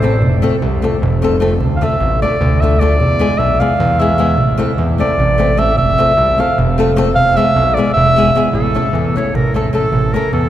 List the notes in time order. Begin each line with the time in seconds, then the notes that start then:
Already playing: A1 C5
0.02 A3 C4 E4 A4, darbuka tek
0.21 F1, darbuka dum
0.42 A3 C4 F4 A4, darbuka tek
0.62 C2, darbuka tek
0.82 A3 C4 F4 A4, darbuka tek
1.02 F1, darbuka dum
1.13 darbuka tek
1.22 A3 C4 F4 A4, darbuka tek
1.40 A3 C4 F4 A4, darbuka tek
1.60 D2, darbuka dum
1.72 darbuka tek
1.76 F5
1.81 A3 D4 F4 A4 E5, darbuka tek
1.92 darbuka tek
2.00 A1, darbuka tek
2.22 A3 D4 F4 A4 D5, darbuka tek
2.33 darbuka tek
2.41 D2, darbuka dum
2.53 darbuka tek
2.61 A3 D4 F4 A4 E5
2.73 darbuka tek
2.80 A3 D4 F4 A4 D5, darbuka tek
2.98 E2, darbuka dum
3.19 G#3 B3 E4 G#4, darbuka tek
3.31 darbuka tek
3.38 B1 E5, darbuka tek
3.59 G#3 B3 E4 G#4 F5, darbuka tek
3.80 E2, darbuka dum
3.91 darbuka tek
3.99 G#3 B3 E4 G#4 E5, darbuka tek
4.18 G#3 B3 E4 G#4
4.37 A1, darbuka dum
4.58 A3 C4 E4 A4, darbuka tek
4.69 darbuka tek
4.78 E2, darbuka tek
4.98 A3 C4 E4 A4 D5
5.18 A1, darbuka dum
5.29 darbuka tek
5.38 A3 C4 E4 A4, darbuka tek
5.57 A3 C4 E4 A4 E5, darbuka tek
5.75 F1 E5, darbuka dum
5.98 A3 C4 F4 A4, darbuka tek
6.17 C2, darbuka tek
6.38 A3 C4 F4 A4 F5, darbuka tek
6.58 F1, darbuka dum
6.69 darbuka tek
6.78 A3 C4 F4 A4
6.96 A3 C4 F4 A4, darbuka tek
7.15 E1 F5, darbuka dum
7.36 G#3 B3 E4 G#4 E5, darbuka tek
7.56 B1, darbuka tek
7.68 darbuka tek
7.74 G#3 B3 D5
7.78 E4 G#4, darbuka tek
7.88 darbuka tek
7.94 E1 E5, darbuka dum
8.16 G#3 B3 E4 G#4, darbuka tek
8.35 G#3 B3 E4 G#4, darbuka tek
8.46 darbuka tek
8.53 A1 A4, darbuka dum
8.75 A3 C#4 E4 A4, darbuka tek
8.86 darbuka tek
8.93 E2, darbuka tek
9.16 A3 C#4 E4 A4 C#5, darbuka tek
9.27 darbuka tek
9.34 A1 A#4, darbuka dum
9.46 darbuka tek
9.54 A3 C#4 E4 A4, darbuka tek
9.66 darbuka tek
9.73 A3 C#4 E4 A4
9.92 A1, darbuka dum
10.13 A3 C#4 E4 A4 A#4, darbuka tek
10.24 darbuka tek
10.33 E2 A4, darbuka tek